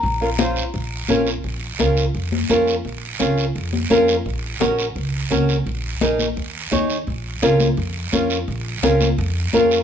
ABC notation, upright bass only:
X:1
M:4/4
L:1/8
Q:1/4=170
K:Bbm
V:1 name="Upright bass" clef=bass
B,,,4 B,,,2 B,,,2 | B,,,2 D,,2 F,,2 F,,2 | B,,,2 D,,2 F,,2 F,,2 | B,,,2 B,,,2 D,,2 D,,2 |
B,,,2 B,,,2 E,,2 E,,2 | B,,,2 D,,2 F,,2 F,,2 | B,,,2 D,,2 F,,2 F,,2 |]